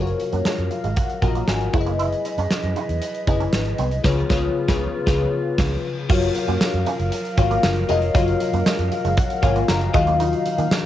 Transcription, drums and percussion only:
0.07 closed hi-hat soft
0.20 closed hi-hat medium
0.33 closed hi-hat medium
0.45 snare loud
0.58 closed hi-hat soft
0.71 closed hi-hat medium
0.84 closed hi-hat medium
0.96 kick medium
0.96 closed hi-hat medium
1.10 closed hi-hat soft
1.22 kick medium
1.22 closed hi-hat medium
1.35 closed hi-hat soft
1.48 snare loud
1.61 closed hi-hat soft
1.73 kick loud
1.73 closed hi-hat medium
1.87 closed hi-hat soft
2.00 closed hi-hat medium
2.12 closed hi-hat soft
2.25 closed hi-hat medium
2.38 closed hi-hat medium
2.51 snare loud
2.64 closed hi-hat soft
2.76 closed hi-hat medium
2.89 closed hi-hat soft
3.02 closed hi-hat medium
3.15 closed hi-hat soft
3.27 kick medium
3.27 closed hi-hat medium
3.40 closed hi-hat medium
3.53 snare loud
3.66 closed hi-hat soft
3.78 closed hi-hat medium
3.91 closed hi-hat soft
4.04 kick loud
4.04 snare loud
4.04 crash medium
4.30 kick loud
4.30 snare loud
4.68 kick loud
4.68 snare loud
5.07 kick loud
5.07 snare loud
5.58 kick loud
5.58 snare loud
5.58 crash medium
6.09 kick loud
6.09 crash loud
6.22 closed hi-hat soft
6.35 closed hi-hat medium
6.48 closed hi-hat medium
6.61 snare loud
6.61 tambourine medium
6.74 closed hi-hat medium
6.86 closed hi-hat medium
7.00 closed hi-hat medium
7.12 closed hi-hat loud
7.25 closed hi-hat medium
7.38 kick loud
7.38 closed hi-hat medium
7.51 closed hi-hat medium
7.63 snare loud
7.63 tambourine medium
7.76 closed hi-hat medium
7.89 closed hi-hat medium
8.02 closed hi-hat medium
8.15 kick loud
8.15 closed hi-hat loud
8.28 closed hi-hat medium
8.40 closed hi-hat medium
8.54 closed hi-hat medium
8.66 snare loud
8.66 tambourine medium
8.79 closed hi-hat medium
8.92 closed hi-hat medium
9.05 closed hi-hat medium
9.17 kick loud
9.17 closed hi-hat loud
9.30 closed hi-hat medium
9.43 kick loud
9.43 closed hi-hat medium
9.56 closed hi-hat medium
9.68 snare loud
9.68 tambourine medium
9.81 closed hi-hat soft
9.94 kick loud
9.94 closed hi-hat medium
10.07 closed hi-hat medium
10.20 closed hi-hat loud
10.33 closed hi-hat medium
10.46 closed hi-hat medium
10.58 closed hi-hat medium
10.71 snare loud
10.71 tambourine medium

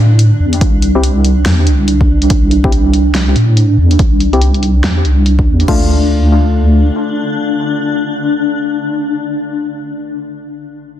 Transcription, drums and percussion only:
0.19 closed hi-hat medium
0.53 closed hi-hat medium
0.61 kick loud
0.61 closed hi-hat medium
0.82 closed hi-hat medium
1.04 closed hi-hat medium
1.25 closed hi-hat soft
1.46 snare loud
1.46 closed hi-hat medium
1.67 closed hi-hat medium
1.88 closed hi-hat medium
2.01 kick medium
2.22 closed hi-hat medium
2.30 kick loud
2.30 closed hi-hat medium
2.51 closed hi-hat medium
2.64 kick loud
2.72 closed hi-hat medium
2.94 closed hi-hat medium
3.15 snare loud
3.15 closed hi-hat medium
3.36 closed hi-hat medium
3.57 closed hi-hat medium
3.91 closed hi-hat medium
3.99 kick loud
3.99 closed hi-hat medium
4.20 closed hi-hat medium
4.33 closed hi-hat soft
4.42 closed hi-hat medium
4.54 closed hi-hat soft
4.63 closed hi-hat medium
4.84 snare loud
4.84 closed hi-hat medium
5.05 closed hi-hat medium
5.26 closed hi-hat medium
5.39 kick medium
5.60 closed hi-hat medium
5.68 kick loud
5.68 crash medium

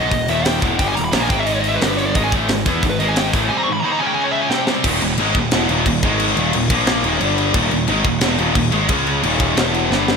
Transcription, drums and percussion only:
0.11 kick medium
0.11 open hi-hat medium
0.28 open hi-hat medium
0.45 snare loud
0.45 open hi-hat medium
0.62 kick loud
0.62 open hi-hat medium
0.79 kick loud
0.79 open hi-hat medium
0.97 open hi-hat medium
1.13 snare loud
1.13 open hi-hat medium
1.30 kick loud
1.30 open hi-hat medium
1.47 open hi-hat medium
1.64 open hi-hat medium
1.82 snare loud
1.82 open hi-hat medium
1.99 open hi-hat medium
2.15 kick loud
2.15 open hi-hat medium
2.32 kick loud
2.32 open hi-hat medium
2.49 snare loud
2.49 open hi-hat medium
2.66 kick loud
2.66 open hi-hat medium
2.83 kick medium
2.83 open hi-hat medium
3.00 open hi-hat medium
3.16 snare loud
3.16 open hi-hat medium
3.33 kick loud
3.33 open hi-hat medium
4.51 snare medium
4.67 snare medium
4.84 kick loud
4.84 crash loud
4.84 crash medium
5.01 crash medium
5.18 crash medium
5.35 kick loud
5.35 crash medium
5.51 snare loud
5.51 crash medium
5.69 crash medium
5.86 kick loud
5.86 crash loud
6.03 kick loud
6.03 crash medium
6.20 crash loud
6.37 crash medium
6.53 crash medium
6.70 kick loud
6.70 crash loud
6.87 snare loud
6.87 crash medium
7.04 crash medium
7.21 crash medium
7.38 crash medium
7.54 kick loud
7.54 crash medium
7.71 crash medium
7.88 crash medium
8.04 kick medium
8.04 crash medium
8.21 snare loud
8.21 crash medium
8.38 crash medium
8.55 kick medium
8.55 crash medium
8.72 crash medium
8.89 kick loud
8.89 crash medium
9.07 crash medium
9.23 crash medium
9.40 kick medium
9.40 crash medium
9.57 snare loud
9.57 crash medium
9.74 crash medium
9.92 snare medium
10.08 snare loud

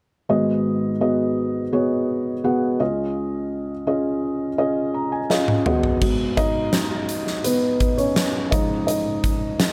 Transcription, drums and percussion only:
5.30 snare soft
5.48 high tom medium
5.66 mid tom medium
5.83 floor tom medium
6.01 kick medium
6.01 crash medium
6.37 kick medium
6.37 closed hi-hat medium
6.73 snare medium
6.73 closed hi-hat medium
7.09 closed hi-hat medium
7.27 snare soft
7.44 closed hi-hat medium
7.80 kick medium
7.80 closed hi-hat medium
7.98 closed hi-hat soft
8.16 snare medium
8.16 closed hi-hat medium
8.52 kick medium
8.52 closed hi-hat medium
8.88 closed hi-hat medium
9.24 kick medium
9.24 closed hi-hat medium
9.60 snare loud
9.60 closed hi-hat medium

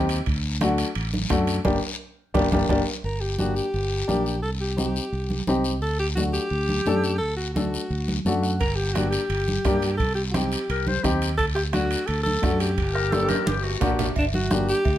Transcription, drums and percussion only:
0.09 high timbale medium
0.09 short guiro medium
0.26 bombo low medium
0.26 high timbale medium
0.26 long guiro medium
0.61 bombo rim medium
0.61 high conga medium
0.61 high timbale medium
0.61 short guiro medium
0.78 high timbale medium
0.78 short guiro medium
0.95 high timbale medium
0.95 long guiro medium
1.14 high conga medium
1.30 bombo low medium
1.30 bombo rim medium
1.30 high conga medium
1.30 high timbale medium
1.30 low timbale medium
1.30 short guiro medium
1.47 high timbale medium
1.47 short guiro medium
1.65 bombo low medium
1.65 high conga medium
1.65 high timbale medium
1.65 long guiro medium
2.35 bombo low medium
2.35 high conga medium
2.35 high timbale loud
2.35 long guiro medium
2.52 bombo low medium
2.52 high conga medium
2.52 high timbale medium
2.52 long guiro loud
2.68 bombo low medium
2.68 high conga medium
2.68 high timbale medium
2.68 long guiro medium
3.04 long guiro medium
3.38 high conga medium
3.38 short guiro medium
3.56 short guiro medium
3.74 long guiro medium
4.09 high conga medium
4.09 short guiro medium
4.26 short guiro medium
4.44 long guiro medium
4.78 high conga medium
4.78 short guiro medium
4.96 short guiro medium
5.13 long guiro medium
5.30 high conga medium
5.47 high conga medium
5.47 short guiro medium
5.64 short guiro medium
5.82 long guiro medium
6.17 high conga medium
6.17 short guiro medium
6.34 short guiro medium
6.50 long guiro medium
6.69 high conga medium
6.86 high conga medium
6.86 short guiro medium
7.04 short guiro medium
7.21 long guiro medium
7.56 high conga medium
7.56 short guiro medium
7.74 short guiro medium
7.91 long guiro medium
8.08 high conga medium
8.26 high conga medium
8.26 short guiro medium
8.43 short guiro medium
8.61 bombo low medium
8.61 high timbale medium
8.61 long guiro medium
8.95 bombo rim medium
8.95 high conga medium
8.95 high timbale medium
8.95 short guiro medium
9.12 high timbale medium
9.12 short guiro medium
9.30 high timbale medium
9.30 long guiro medium
9.48 high conga medium
9.65 bombo low medium
9.65 bombo rim medium
9.65 high conga medium
9.65 high timbale medium
9.65 low timbale medium
9.65 short guiro medium
9.82 high timbale medium
9.82 short guiro medium
10.00 bombo low medium
10.00 high timbale medium
10.00 long guiro medium
10.34 bombo rim medium
10.34 high conga medium
10.34 high timbale medium
10.34 short guiro medium
10.52 high timbale medium
10.52 short guiro medium
10.70 high timbale medium
10.70 long guiro medium
10.87 high conga medium
11.04 bombo low medium
11.04 bombo rim medium
11.04 high conga medium
11.04 high timbale medium
11.04 short guiro medium
11.22 high timbale medium
11.22 short guiro medium
11.39 bombo low medium
11.39 high timbale medium
11.39 long guiro medium
11.56 bombo rim medium
11.73 bombo rim medium
11.73 high conga medium
11.73 high timbale medium
11.73 short guiro medium
11.91 high timbale medium
11.91 short guiro medium
12.08 high timbale medium
12.08 long guiro medium
12.27 high conga medium
12.43 bombo low medium
12.43 bombo rim medium
12.43 high conga medium
12.43 high timbale medium
12.43 low timbale medium
12.43 short guiro medium
12.60 high timbale medium
12.60 short guiro medium
12.78 bombo low medium
12.78 high timbale medium
12.78 long guiro medium
12.95 bombo rim medium
13.12 bombo rim medium
13.12 high conga medium
13.12 high timbale medium
13.12 short guiro medium
13.29 high conga medium
13.29 high timbale medium
13.29 short guiro medium
13.46 high conga medium
13.46 high timbale medium
13.46 long guiro medium
13.63 low timbale medium
13.81 bombo low medium
13.81 bombo rim medium
13.81 low conga medium
13.81 low timbale medium
13.81 short guiro medium
13.99 low conga medium
13.99 low timbale medium
13.99 short guiro medium
14.16 bombo low medium
14.16 cowbell loud
14.16 long guiro medium
14.34 high conga medium
14.51 bombo rim medium
14.51 high conga medium
14.51 short guiro medium
14.69 short guiro medium
14.85 bombo low medium
14.85 cowbell medium
14.85 long guiro medium

